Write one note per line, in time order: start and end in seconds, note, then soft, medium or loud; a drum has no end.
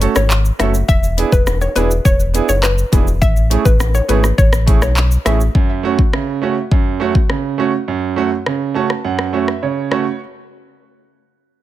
0.01 0.13 A3 medium
0.01 0.13 C#4 medium
0.01 0.13 F#4 medium
0.01 0.14 A4 medium
0.01 closed hi-hat medium
0.01 shaker medium
0.16 0.51 G#1 medium
0.16 0.29 C#5 medium
0.16 cross-stick loud
0.16 high bongo medium
0.16 shaker medium
0.30 clap loud
0.30 shaker medium
0.45 shaker medium
0.59 0.83 F#1 medium
0.59 0.71 A3 medium
0.59 0.71 C#4 medium
0.59 0.72 F#4 medium
0.59 0.72 A4 medium
0.59 0.72 E5 medium
0.59 cross-stick loud
0.59 closed hi-hat medium
0.59 high bongo medium
0.59 low bongo medium
0.59 shaker medium
0.74 shaker medium
0.89 1.24 E1 loud
0.89 1.13 E5 loud
0.89 kick loud
0.89 shaker medium
1.03 shaker medium
1.17 1.29 B3 medium
1.17 1.30 D4 medium
1.17 1.30 E4 medium
1.17 1.30 G#4 medium
1.17 closed hi-hat medium
1.17 shaker medium
1.32 1.68 E1 loud
1.32 1.45 B4 medium
1.32 kick loud
1.32 shaker medium
1.47 cross-stick loud
1.47 high bongo medium
1.47 shaker medium
1.61 1.74 C#5 medium
1.61 high bongo medium
1.61 shaker medium
1.75 2.00 E1 loud
1.75 1.88 B3 medium
1.75 1.88 D4 medium
1.75 1.88 E4 medium
1.75 1.88 G#4 medium
1.75 1.88 B4 medium
1.75 closed hi-hat medium
1.75 low bongo medium
1.75 shaker soft
1.91 shaker medium
2.05 2.41 E1 loud
2.05 2.18 C#5 loud
2.05 kick loud
2.05 shaker medium
2.20 shaker medium
2.34 2.46 B3 medium
2.34 2.46 D4 medium
2.34 2.46 E4 medium
2.34 2.47 G#4 medium
2.34 closed hi-hat medium
2.34 shaker medium
2.49 2.84 F#1 medium
2.49 2.61 C#5 medium
2.49 high bongo medium
2.49 shaker medium
2.63 3.05 B4 medium
2.63 cross-stick loud
2.63 clap loud
2.63 shaker medium
2.78 shaker medium
2.92 3.23 E1 loud
2.92 3.04 B3 medium
2.92 3.04 D4 medium
2.92 3.04 E4 medium
2.92 3.05 G#4 medium
2.92 kick loud
2.92 closed hi-hat medium
2.92 high bongo medium
2.92 low bongo medium
2.92 shaker medium
3.07 shaker medium
3.22 3.57 A1 loud
3.22 3.47 E5 loud
3.22 kick loud
3.22 shaker medium
3.36 shaker medium
3.50 3.62 A3 medium
3.50 3.63 C#4 medium
3.50 3.63 E4 medium
3.50 3.63 G#4 medium
3.50 closed hi-hat medium
3.50 shaker medium
3.65 4.01 A1 loud
3.65 3.78 B4 medium
3.65 kick loud
3.65 shaker medium
3.80 cross-stick loud
3.80 high bongo medium
3.80 shaker medium
3.95 4.07 C#5 medium
3.95 high bongo medium
3.95 shaker medium
4.08 4.33 G#1 medium
4.08 4.21 A3 medium
4.08 4.21 C#4 medium
4.08 4.21 E4 medium
4.08 4.21 G#4 medium
4.08 4.22 B4 medium
4.08 closed hi-hat medium
4.08 low bongo medium
4.08 shaker soft
4.24 cross-stick medium
4.24 shaker medium
4.38 4.84 A1 loud
4.38 4.51 C#5 medium
4.38 kick loud
4.38 shaker medium
4.53 cross-stick loud
4.53 shaker medium
4.66 4.79 A3 medium
4.66 4.79 C#4 medium
4.66 4.79 E4 medium
4.66 4.79 G#4 medium
4.66 kick medium
4.66 closed hi-hat medium
4.66 shaker medium
4.82 5.17 B1 medium
4.82 4.95 C#5 medium
4.82 cross-stick loud
4.82 high bongo medium
4.82 shaker medium
4.97 clap loud
4.97 shaker medium
5.11 shaker medium
5.25 5.49 A1 loud
5.25 5.37 A3 medium
5.25 5.37 C#4 medium
5.25 5.38 E4 medium
5.25 5.38 G#4 medium
5.25 5.38 E5 medium
5.25 cross-stick loud
5.25 closed hi-hat medium
5.25 high bongo medium
5.25 low bongo medium
5.25 shaker medium
5.41 shaker medium
5.55 5.98 F#2 medium
5.55 kick loud
5.83 5.95 A3 medium
5.83 5.96 C#4 medium
5.83 5.96 F#4 loud
5.99 kick loud
6.13 6.57 C#3 medium
6.13 cross-stick loud
6.42 6.54 A3 medium
6.42 6.54 C#4 medium
6.42 6.54 F#4 medium
6.72 7.15 F#2 medium
6.72 kick loud
7.00 7.12 A3 medium
7.00 7.12 C#4 medium
7.00 7.13 F#4 loud
7.15 kick medium
7.30 7.73 C#3 medium
7.30 cross-stick medium
7.58 7.70 A3 medium
7.58 7.70 C#4 medium
7.58 7.71 F#4 loud
7.88 8.31 F#2 medium
8.16 8.28 A3 medium
8.16 8.29 C#4 medium
8.16 8.29 F#4 loud
8.46 8.90 C#3 medium
8.46 cross-stick medium
8.74 8.86 A3 medium
8.74 8.87 C#4 medium
8.74 8.87 F#4 loud
8.74 9.02 A5 medium
8.90 cross-stick medium
9.05 9.48 F#2 medium
9.05 9.32 F#5 medium
9.19 cross-stick medium
9.33 9.45 A3 medium
9.33 9.45 C#4 medium
9.33 9.46 F#4 medium
9.33 9.61 E5 medium
9.48 cross-stick medium
9.63 10.06 C#3 medium
9.63 9.90 C#5 medium
9.91 10.03 A3 medium
9.91 10.03 C#4 medium
9.91 10.04 F#4 loud
9.91 10.19 C#5 medium
9.91 cross-stick medium